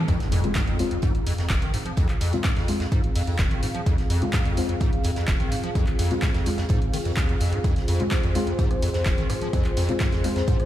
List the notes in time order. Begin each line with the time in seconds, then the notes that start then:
0.08 F2 C4 F4 G#4 F5, kick, closed hi-hat, impact
0.20 snare, closed hi-hat
0.32 F2, closed hi-hat, open hi-hat
0.44 F3 G#3 C4 F4, closed hi-hat
0.55 G#2, kick, snare, clap, closed hi-hat
0.67 F2, closed hi-hat
0.79 D#2 G#3 C4 F4, closed hi-hat, open hi-hat
0.91 F2, closed hi-hat
1.02 G#2, kick, closed hi-hat
1.15 closed hi-hat
1.27 F2, closed hi-hat, open hi-hat
1.38 F2, snare, closed hi-hat
1.50 F1, kick, snare, clap, closed hi-hat
1.62 D#3, closed hi-hat
1.74 G#2, closed hi-hat, open hi-hat
1.86 F3, closed hi-hat
1.97 F2, kick, closed hi-hat
2.09 clap, closed hi-hat
2.21 F2, snare, closed hi-hat, open hi-hat
2.33 F3 G#3 C4 F4, closed hi-hat
2.44 G#2, kick, snare, clap, closed hi-hat
2.56 F2, snare, closed hi-hat
2.68 D#2 G#3 C4 F4, closed hi-hat, open hi-hat
2.80 F2, snare, closed hi-hat
2.92 G#2, kick, closed hi-hat
3.04 closed hi-hat
3.15 F2, open hi-hat
3.27 F2, closed hi-hat
3.39 F1, kick, snare, clap, closed hi-hat
3.51 D#3, closed hi-hat
3.62 G#2, closed hi-hat, open hi-hat
3.75 F3, closed hi-hat
3.86 F2, kick, closed hi-hat
3.98 snare, closed hi-hat
4.10 F2, closed hi-hat, open hi-hat
4.22 F3 G#3 C4 F4, closed hi-hat
4.33 G#2, kick, snare, clap, closed hi-hat
4.45 F2, closed hi-hat
4.57 D#2 G#3 C4 F4, closed hi-hat, open hi-hat
4.69 F2, closed hi-hat
4.80 G#2, kick, closed hi-hat
4.93 closed hi-hat
5.03 F2, closed hi-hat, open hi-hat
5.16 F2, snare, closed hi-hat
5.28 F1, kick, snare, clap, closed hi-hat
5.40 D#3, closed hi-hat
5.52 G#2, closed hi-hat, open hi-hat
5.64 F3, closed hi-hat
5.75 F2, kick, closed hi-hat
5.87 clap, closed hi-hat
5.99 F2, snare, closed hi-hat, open hi-hat
6.11 F3 G#3 C4 F4, closed hi-hat
6.22 G#2, kick, snare, clap, closed hi-hat
6.34 F2, snare, closed hi-hat
6.46 D#2 G#3 C4 F4, closed hi-hat, open hi-hat
6.58 F2, snare, closed hi-hat
6.69 G#2, kick, closed hi-hat
6.82 closed hi-hat
6.93 D#3, open hi-hat
7.05 F2, closed hi-hat
7.17 D#2, kick, snare, clap, closed hi-hat
7.29 F2, closed hi-hat
7.40 F2, closed hi-hat, open hi-hat
7.53 G#2, closed hi-hat
7.64 F2 C5, kick, closed hi-hat
7.76 snare, closed hi-hat
7.88 F2, closed hi-hat, open hi-hat
8.00 F3 G#3 C4 F4, closed hi-hat
8.11 G#2, kick, cross-stick, snare, clap, closed hi-hat
8.23 F2, closed hi-hat
8.35 D#2 G#3 C4 F4, closed hi-hat, open hi-hat
8.47 F2, closed hi-hat
8.59 G#2, kick, closed hi-hat
8.71 cross-stick, closed hi-hat
8.82 F2, closed hi-hat, open hi-hat
8.94 F2, snare, closed hi-hat
9.05 F1, kick, snare, clap, closed hi-hat
9.18 D#3, closed hi-hat
9.30 G#2, cross-stick, closed hi-hat, open hi-hat
9.42 F3, closed hi-hat
9.53 F2, kick, closed hi-hat
9.65 clap, closed hi-hat
9.77 F2, snare, closed hi-hat, open hi-hat
9.89 F3 G#3 C4 F4, closed hi-hat
10.00 G#2, kick, cross-stick, snare, clap, closed hi-hat
10.12 F2, snare, closed hi-hat
10.24 D#2 G#3 C4 F4, closed hi-hat, open hi-hat
10.36 F2, snare, closed hi-hat
10.47 G#2, kick, closed hi-hat
10.60 cross-stick, closed hi-hat